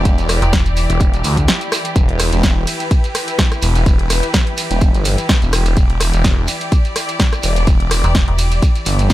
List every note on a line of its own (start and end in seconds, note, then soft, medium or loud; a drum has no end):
0.00 9.13 E3 medium
0.00 9.13 E4 medium
0.00 9.13 G4 medium
0.00 1.94 D5 medium
0.05 0.40 E1 medium
0.05 kick loud
0.05 closed hi-hat medium
0.05 shekere soft
0.18 closed hi-hat soft
0.18 shekere soft
0.29 cross-stick medium
0.29 open hi-hat loud
0.29 shekere medium
0.42 0.88 E1 loud
0.42 closed hi-hat medium
0.42 shekere soft
0.53 kick loud
0.53 snare loud
0.53 closed hi-hat medium
0.53 shekere medium
0.66 closed hi-hat soft
0.66 shekere soft
0.77 open hi-hat medium
0.77 shekere medium
0.90 1.23 E1 loud
0.90 closed hi-hat medium
0.90 shekere soft
1.00 kick loud
1.00 closed hi-hat medium
1.00 shekere medium
1.14 closed hi-hat soft
1.14 shekere soft
1.24 1.48 D2 loud
1.24 open hi-hat loud
1.24 shekere medium
1.37 kick medium
1.37 closed hi-hat medium
1.37 shekere soft
1.48 snare loud
1.48 closed hi-hat medium
1.48 shekere medium
1.61 closed hi-hat soft
1.61 shekere soft
1.72 cross-stick medium
1.72 open hi-hat medium
1.72 shekere medium
1.85 closed hi-hat medium
1.85 shekere soft
1.96 2.31 E1 medium
1.96 5.75 B4 medium
1.96 kick loud
1.96 closed hi-hat medium
1.96 shekere medium
2.09 closed hi-hat soft
2.19 cross-stick medium
2.19 open hi-hat loud
2.19 ride medium
2.19 shekere medium
2.33 2.65 E1 loud
2.33 closed hi-hat medium
2.33 shekere soft
2.43 kick loud
2.43 snare loud
2.43 closed hi-hat medium
2.43 shekere medium
2.67 open hi-hat medium
2.67 ride medium
2.67 shekere medium
2.80 closed hi-hat medium
2.80 shekere soft
2.91 kick loud
2.91 closed hi-hat medium
2.91 shekere medium
3.04 closed hi-hat soft
3.04 shekere soft
3.15 cross-stick medium
3.15 open hi-hat loud
3.15 ride medium
3.15 shekere medium
3.28 closed hi-hat medium
3.28 shekere soft
3.39 kick loud
3.39 snare loud
3.39 closed hi-hat medium
3.39 shekere soft
3.52 cross-stick medium
3.52 closed hi-hat soft
3.52 shekere soft
3.62 3.85 E1 loud
3.62 open hi-hat medium
3.62 ride medium
3.62 shekere medium
3.75 closed hi-hat medium
3.75 shekere soft
3.86 4.21 E1 medium
3.86 kick loud
3.86 closed hi-hat medium
3.86 shekere medium
3.99 closed hi-hat soft
4.10 cross-stick medium
4.10 open hi-hat loud
4.10 ride medium
4.10 shekere loud
4.23 closed hi-hat medium
4.23 shekere soft
4.34 kick loud
4.34 snare loud
4.34 closed hi-hat medium
4.34 shekere medium
4.47 closed hi-hat soft
4.58 open hi-hat loud
4.58 ride medium
4.58 shekere loud
4.71 4.92 E1 loud
4.71 closed hi-hat medium
4.71 shekere soft
4.81 kick loud
4.81 closed hi-hat medium
4.81 shekere medium
4.94 5.16 G1 loud
4.94 closed hi-hat soft
4.94 shekere soft
5.05 open hi-hat loud
5.05 ride medium
5.05 shekere medium
5.18 closed hi-hat medium
5.18 shekere soft
5.29 kick loud
5.29 snare loud
5.29 closed hi-hat medium
5.29 shekere medium
5.42 5.75 E1 loud
5.42 closed hi-hat soft
5.42 shekere soft
5.53 cross-stick medium
5.53 open hi-hat loud
5.53 ride medium
5.53 shekere medium
5.65 closed hi-hat medium
5.65 shekere soft
5.77 6.11 E1 loud
5.77 9.13 D5 medium
5.77 kick loud
5.77 closed hi-hat medium
5.77 shekere medium
5.90 closed hi-hat soft
6.00 cross-stick medium
6.00 open hi-hat loud
6.00 ride medium
6.00 shekere loud
6.14 6.46 E1 loud
6.14 closed hi-hat soft
6.14 shekere soft
6.24 kick loud
6.24 snare loud
6.24 closed hi-hat medium
6.24 shekere medium
6.48 open hi-hat loud
6.48 ride medium
6.48 shekere loud
6.60 closed hi-hat medium
6.60 shekere soft
6.72 kick loud
6.72 closed hi-hat medium
6.72 shekere medium
6.85 closed hi-hat soft
6.85 shekere soft
6.96 cross-stick medium
6.96 open hi-hat loud
6.96 ride medium
6.96 shekere loud
7.09 closed hi-hat medium
7.09 shekere soft
7.19 kick loud
7.19 snare loud
7.19 closed hi-hat medium
7.19 shekere soft
7.33 cross-stick medium
7.33 closed hi-hat soft
7.33 shekere soft
7.43 7.65 E1 loud
7.43 open hi-hat loud
7.43 ride medium
7.43 shekere loud
7.56 closed hi-hat medium
7.56 shekere soft
7.67 8.02 E1 medium
7.67 kick loud
7.67 closed hi-hat medium
7.67 shekere medium
7.80 closed hi-hat soft
7.91 cross-stick medium
7.91 open hi-hat loud
7.91 ride medium
7.91 shekere loud
8.04 8.26 E1 loud
8.04 closed hi-hat soft
8.04 shekere soft
8.15 kick loud
8.15 snare loud
8.15 closed hi-hat medium
8.15 shekere medium
8.28 8.61 E1 loud
8.28 closed hi-hat soft
8.39 open hi-hat loud
8.39 ride medium
8.39 shekere medium
8.51 closed hi-hat medium
8.51 shekere soft
8.62 kick loud
8.62 closed hi-hat medium
8.62 shekere medium
8.75 closed hi-hat soft
8.75 shekere soft
8.86 9.13 G1 loud
8.86 open hi-hat loud
8.86 ride medium
8.86 shekere medium
8.99 closed hi-hat medium
8.99 shekere soft
9.10 kick loud
9.10 snare loud
9.10 closed hi-hat medium
9.10 shekere medium